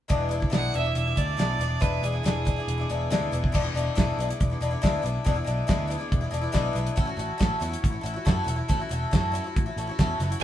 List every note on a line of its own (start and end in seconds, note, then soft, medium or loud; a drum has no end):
0.08 0.43 E1 medium
0.08 0.30 E2 medium
0.08 0.31 E3 medium
0.08 0.28 G#3 medium
0.08 0.30 B3 medium
0.08 0.29 D4 medium
0.08 0.32 E4 medium
0.08 kick medium
0.08 closed hi-hat medium
0.29 0.41 G#3 medium
0.29 0.41 B3 medium
0.29 0.41 D4 medium
0.29 0.39 E4 medium
0.29 closed hi-hat medium
0.40 0.50 G#3 soft
0.40 0.50 B3 soft
0.40 0.50 D4 soft
0.40 0.51 E4 soft
0.40 kick medium
0.50 0.69 B1 medium
0.50 0.73 E2 medium
0.50 0.73 E3 medium
0.50 0.71 G#3 medium
0.50 0.73 B3 medium
0.50 0.72 D4 medium
0.50 0.74 E4 medium
0.50 snare loud
0.50 closed hi-hat medium
0.56 0.75 F#5 medium
0.72 0.91 E1 medium
0.72 0.84 G#3 medium
0.72 0.84 B3 medium
0.72 0.85 D4 medium
0.72 0.83 E4 medium
0.72 closed hi-hat medium
0.77 0.96 E5 medium
0.84 1.07 G#3 soft
0.84 1.05 B3 soft
0.84 1.06 D4 soft
0.84 1.04 E4 soft
0.95 1.12 E1 medium
0.95 1.20 E5 medium
0.95 closed hi-hat medium
1.05 1.14 G#3 soft
1.05 1.16 B3 soft
1.05 1.16 D4 soft
1.05 1.17 E4 soft
1.16 1.34 D2 medium
1.16 1.37 G#3 medium
1.16 1.38 B3 medium
1.16 1.38 D4 medium
1.16 1.38 E4 medium
1.16 1.82 D5 medium
1.16 kick medium
1.16 closed hi-hat medium
1.37 1.55 B1 medium
1.37 1.59 E2 medium
1.37 1.60 E3 medium
1.37 1.57 G#3 medium
1.37 1.60 B3 medium
1.37 1.58 D4 medium
1.37 1.60 E4 medium
1.37 snare medium
1.37 closed hi-hat medium
1.58 1.76 E1 medium
1.58 1.80 G#3 soft
1.58 1.81 B3 medium
1.58 1.81 D4 medium
1.58 1.81 E4 medium
1.58 closed hi-hat medium
1.80 1.99 E1 medium
1.80 2.02 E2 medium
1.80 2.03 E3 medium
1.80 2.02 G#3 medium
1.80 2.03 B3 medium
1.80 2.02 D4 medium
1.80 2.03 E4 medium
1.80 2.05 B4 medium
1.80 kick loud
1.80 closed hi-hat medium
2.03 2.19 E1 medium
2.03 2.14 G#3 medium
2.03 2.12 B3 medium
2.03 2.13 D4 medium
2.03 2.11 E4 medium
2.03 3.32 G#4 medium
2.03 closed hi-hat medium
2.12 2.23 G#3 soft
2.12 2.24 B3 soft
2.12 2.24 D4 soft
2.12 2.24 E4 soft
2.23 2.58 E1 medium
2.23 2.46 E2 medium
2.23 2.46 E3 medium
2.23 2.44 G#3 medium
2.23 2.46 B3 medium
2.23 2.44 D4 medium
2.23 2.47 E4 medium
2.23 snare loud
2.23 closed hi-hat medium
2.45 2.56 G#3 medium
2.45 2.57 B3 medium
2.45 2.57 D4 medium
2.45 2.55 E4 medium
2.45 kick medium
2.45 closed hi-hat medium
2.56 2.80 G#3 soft
2.56 2.78 B3 medium
2.56 2.79 D4 soft
2.56 2.76 E4 medium
2.68 2.84 E1 medium
2.68 closed hi-hat medium
2.78 2.88 G#3 soft
2.78 2.90 B3 medium
2.78 2.89 D4 soft
2.78 2.89 E4 medium
2.89 3.07 E1 medium
2.89 3.10 G#3 medium
2.89 3.10 B3 medium
2.89 3.10 D4 medium
2.89 3.11 E4 medium
2.89 closed hi-hat medium
3.10 3.28 D2 medium
3.10 3.32 E2 medium
3.10 3.32 E3 medium
3.10 3.30 G#3 medium
3.10 3.32 B3 medium
3.10 3.31 D4 medium
3.10 3.33 E4 medium
3.10 snare medium
3.10 closed hi-hat medium
3.31 3.49 E1 medium
3.31 3.52 G#3 medium
3.31 3.53 B3 medium
3.31 3.53 D4 medium
3.31 3.53 E4 medium
3.31 closed hi-hat medium
3.44 kick medium
3.52 3.68 E1 medium
3.52 3.64 E2 medium
3.52 3.64 E3 medium
3.52 3.64 G#3 medium
3.52 3.63 B3 medium
3.52 3.63 D4 medium
3.52 3.61 E4 medium
3.52 kick loud
3.52 crash medium
3.62 3.74 G#3 soft
3.62 3.75 B3 medium
3.62 3.74 D4 medium
3.62 3.74 E4 medium
3.74 3.88 E1 medium
3.74 3.95 G#3 medium
3.74 3.95 B3 medium
3.74 3.95 D4 medium
3.74 3.96 E4 medium
3.74 closed hi-hat medium
3.95 4.10 E1 medium
3.95 4.18 E2 medium
3.95 4.18 E3 medium
3.95 4.17 G#3 medium
3.95 4.18 B3 medium
3.95 4.18 D4 medium
3.95 4.18 E4 medium
3.95 kick loud
3.95 snare loud
3.95 closed hi-hat medium
4.18 4.31 B1 medium
4.18 4.29 G#3 medium
4.18 4.29 D4 medium
4.18 closed hi-hat medium
4.22 4.27 B3 medium
4.22 4.27 E4 medium
4.28 4.52 G#3 medium
4.28 4.50 B3 soft
4.28 4.51 D4 soft
4.28 4.49 E4 medium
4.28 closed hi-hat medium
4.40 4.54 E1 medium
4.40 kick loud
4.40 closed hi-hat medium
4.50 4.59 G#3 soft
4.50 4.62 B3 soft
4.50 4.60 D4 soft
4.50 4.61 E4 soft
4.61 4.74 E1 medium
4.61 4.72 G#3 medium
4.61 4.70 B3 medium
4.61 4.71 D4 medium
4.61 4.69 E4 medium
4.61 closed hi-hat medium
4.71 4.81 G#3 soft
4.71 4.82 B3 medium
4.71 4.82 D4 medium
4.71 4.82 E4 medium
4.82 4.97 D2 medium
4.82 5.04 E2 medium
4.82 5.04 E3 medium
4.82 5.01 G#3 medium
4.82 5.02 B3 medium
4.82 5.02 D4 medium
4.82 5.03 E4 loud
4.82 kick loud
4.82 snare loud
4.82 closed hi-hat medium
5.02 5.17 B1 medium
5.02 5.24 G#3 medium
5.02 5.25 B3 medium
5.02 5.25 D4 medium
5.02 5.26 E4 medium
5.02 closed hi-hat medium
5.24 5.40 E1 medium
5.24 5.36 E2 medium
5.24 5.36 E3 medium
5.24 5.36 G#3 medium
5.24 5.34 B3 medium
5.24 5.35 D4 medium
5.24 5.33 E4 medium
5.24 kick loud
5.24 closed hi-hat medium
5.34 5.43 G#3 soft
5.34 5.46 B3 medium
5.34 5.45 D4 medium
5.34 5.46 E4 medium
5.44 5.61 B1 medium
5.44 5.66 G#3 medium
5.44 5.67 B3 medium
5.44 5.67 D4 medium
5.44 5.68 E4 medium
5.44 closed hi-hat medium
5.67 5.96 D2 medium
5.67 5.89 E2 medium
5.67 5.90 E3 medium
5.67 5.86 G#3 medium
5.67 5.89 B3 medium
5.67 5.87 D4 medium
5.67 5.89 E4 medium
5.67 kick loud
5.67 snare loud
5.67 closed hi-hat medium
5.88 6.00 G#3 medium
5.88 5.98 B3 medium
5.88 5.99 D4 medium
5.88 5.97 E4 medium
5.88 closed hi-hat medium
5.98 6.22 G#3 soft
5.98 6.21 B3 medium
5.98 6.22 D4 soft
5.98 6.20 E4 medium
6.12 6.25 E1 medium
6.12 kick loud
6.12 closed hi-hat medium
6.21 6.29 G#3 soft
6.21 6.32 B3 medium
6.21 6.30 D4 soft
6.21 6.32 E4 medium
6.31 6.46 E1 medium
6.31 6.43 G#3 medium
6.31 6.42 B3 medium
6.31 6.42 D4 medium
6.31 6.40 E4 medium
6.31 closed hi-hat medium
6.41 6.51 G#3 soft
6.41 6.53 B3 medium
6.41 6.52 D4 medium
6.41 6.53 E4 medium
6.52 6.68 B1 medium
6.52 6.75 E2 medium
6.52 6.75 E3 medium
6.52 6.72 G#3 medium
6.52 6.74 B3 medium
6.52 6.74 D4 medium
6.52 6.76 E4 medium
6.52 kick medium
6.52 snare medium
6.52 closed hi-hat medium
6.73 6.88 B1 medium
6.73 6.96 G#3 medium
6.73 6.97 B3 medium
6.73 6.96 D4 medium
6.73 closed hi-hat medium
6.77 6.96 E4 medium
6.87 closed hi-hat medium
6.96 7.11 A1 medium
6.96 7.07 A2 medium
6.96 7.07 A3 medium
6.96 7.08 C#4 medium
6.96 7.04 E4 medium
6.96 7.06 F#4 medium
6.96 kick medium
6.96 closed hi-hat medium
7.05 7.16 C#4 soft
7.05 7.17 E4 medium
7.05 7.18 F#4 medium
7.16 7.31 A1 medium
7.16 7.38 A3 medium
7.16 7.38 C#4 medium
7.16 7.39 E4 medium
7.16 7.38 F#4 medium
7.16 closed hi-hat medium
7.38 7.54 A1 medium
7.38 7.60 A2 medium
7.38 7.58 A3 medium
7.38 7.59 C#4 medium
7.38 7.61 E4 medium
7.38 7.60 F#4 medium
7.38 kick loud
7.38 snare loud
7.38 closed hi-hat medium
7.60 7.74 E2 medium
7.60 7.71 A3 medium
7.60 7.71 C#4 medium
7.60 7.67 E4 medium
7.60 7.68 F#4 medium
7.60 closed hi-hat medium
7.68 7.93 C#4 soft
7.68 7.89 E4 medium
7.68 7.91 F#4 soft
7.74 closed hi-hat medium
7.84 7.97 A1 medium
7.84 kick loud
7.84 closed hi-hat medium
7.90 8.02 C#4 soft
7.90 8.03 E4 medium
7.90 8.02 F#4 soft
8.01 8.17 A1 medium
8.01 8.14 A3 medium
8.01 8.15 C#4 medium
8.01 8.12 E4 medium
8.01 8.15 F#4 medium
8.06 closed hi-hat medium
8.14 8.25 C#4 soft
8.14 8.25 E4 medium
8.14 8.25 F#4 medium
8.25 8.40 F#2 medium
8.25 8.47 A2 medium
8.25 8.43 A3 medium
8.25 8.45 C#4 medium
8.25 8.47 E4 loud
8.25 8.46 F#4 medium
8.25 kick loud
8.25 snare loud
8.25 closed hi-hat medium
8.44 8.60 E1 medium
8.44 8.57 A3 medium
8.44 8.58 C#4 medium
8.44 8.55 E4 medium
8.44 8.57 F#4 medium
8.44 closed hi-hat medium
8.56 8.68 C#4 soft
8.56 8.68 E4 medium
8.56 8.68 F#4 soft
8.68 8.83 A1 medium
8.68 8.79 A2 medium
8.68 8.80 A3 medium
8.68 8.80 C#4 medium
8.68 8.78 E4 medium
8.68 8.80 F#4 medium
8.68 kick loud
8.68 closed hi-hat medium
8.80 8.90 C#4 soft
8.80 8.90 E4 medium
8.80 8.91 F#4 soft
8.89 9.04 E1 medium
8.89 9.11 A3 medium
8.89 9.12 C#4 medium
8.89 9.13 E4 medium
8.89 9.12 F#4 medium
8.89 closed hi-hat medium
9.11 9.39 F#2 medium
9.11 9.33 A2 medium
9.11 9.30 A3 medium
9.11 9.32 C#4 medium
9.11 9.34 E4 medium
9.11 9.33 F#4 medium
9.11 kick loud
9.11 snare loud
9.11 closed hi-hat medium
9.32 9.43 A3 medium
9.32 9.44 C#4 medium
9.32 9.43 E4 medium
9.32 9.44 F#4 medium
9.32 closed hi-hat medium
9.44 9.67 C#4 soft
9.44 9.65 E4 medium
9.44 9.65 F#4 soft
9.56 9.69 A1 medium
9.56 kick loud
9.56 closed hi-hat medium
9.66 9.77 C#4 soft
9.66 9.77 E4 medium
9.66 9.77 F#4 soft
9.76 9.90 A1 medium
9.76 9.88 A3 medium
9.76 9.88 C#4 medium
9.76 9.88 F#4 medium
9.76 closed hi-hat medium
9.81 9.86 E4 medium
9.87 9.98 E4 medium
9.87 9.99 F#4 medium
9.91 9.99 C#4 soft
9.99 10.12 E2 medium
9.99 10.20 A2 medium
9.99 10.18 A3 medium
9.99 10.20 C#4 medium
9.99 10.21 E4 medium
9.99 10.20 F#4 medium
9.99 kick medium
9.99 snare loud
9.99 closed hi-hat soft
10.20 10.33 F#1 medium
10.20 10.30 A3 medium
10.20 10.31 C#4 medium
10.20 10.29 E4 medium
10.20 10.30 F#4 medium
10.20 snare soft
10.20 closed hi-hat medium
10.30 10.42 C#4 soft
10.30 10.41 E4 soft
10.30 10.41 F#4 soft
10.30 closed hi-hat medium